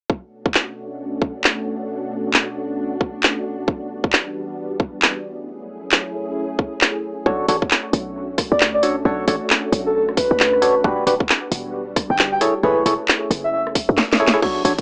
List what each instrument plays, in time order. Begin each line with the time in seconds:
0.10 string machine B2 A3 C#4 D4 F#4, kick
0.46 kick
0.54 clap
1.22 kick
1.44 clap
2.34 clap
3.01 kick
3.23 clap
3.68 string machine E2 G3 B3, kick
4.04 kick
4.13 clap
4.80 kick
5.02 clap
5.25 string machine F#2 A3 C#4 E4 G#4
5.92 clap
6.59 kick
6.81 clap
7.26 808-style bass B1, string machine A3 C#4 D4 F#4, synth stab D4 F#4 A4 C#5, kick
7.48 808-style bass A1, synth stab D4 F#4 A4 C#5, open hi-hat
7.62 kick
7.71 clap
7.93 808-style bass B1, cross-stick, open hi-hat
8.38 kick, cross-stick, open hi-hat
8.52 808-style bass D2, soft synth lead D5
8.60 clap
8.74 soft synth lead D5
8.83 synth stab D4 F#4 A4 C#5, open hi-hat
9.05 808-style bass B1, synth stab D4 F#4 A4 C#5
9.28 808-style bass A1, synth stab D4 F#4 A4 C#5, open hi-hat
9.50 clap
9.72 808-style bass B1, open hi-hat
9.86 soft synth lead A4
9.95 soft synth lead A4
10.09 cross-stick
10.17 soft synth lead B4, kick, open hi-hat
10.31 808-style bass D2
10.40 clap
10.53 cross-stick
10.62 synth stab D4 F#4 A4 C#5, open hi-hat
10.84 808-style bass E1, string machine G3 B3, synth stab D4 F#4 G4 B4, kick
11.07 808-style bass D1, synth stab D4 F#4 G4 B4, open hi-hat
11.20 kick
11.29 clap
11.52 808-style bass E1, open hi-hat
11.96 kick, cross-stick, open hi-hat
12.10 808-style bass G1, soft synth lead G5
12.19 clap
12.32 soft synth lead G5
12.41 string machine A3 C#4 E4 G#4, synth stab E4 G#4 A4 C#5, open hi-hat
12.63 808-style bass F#1, synth stab E4 G#4 A4 C#5, soft synth lead B4
12.86 808-style bass E1, synth stab E4 G#4 A4 C#5, open hi-hat
13.08 clap
13.30 808-style bass F#1, cross-stick, open hi-hat
13.44 soft synth lead E5
13.53 soft synth lead E5
13.67 cross-stick
13.75 kick, open hi-hat
13.89 808-style bass F#2
13.98 snare
14.13 snare
14.20 synth stab E4 G#4 A4 C#5
14.28 snare
14.34 synth stab E4 G#4 A4 C#5
14.42 808-style bass B1, synth stab D4 F#4 A4 C#5, kick, crash
14.65 808-style bass A1, synth stab D4 F#4 A4 C#5, open hi-hat
14.78 kick, closed hi-hat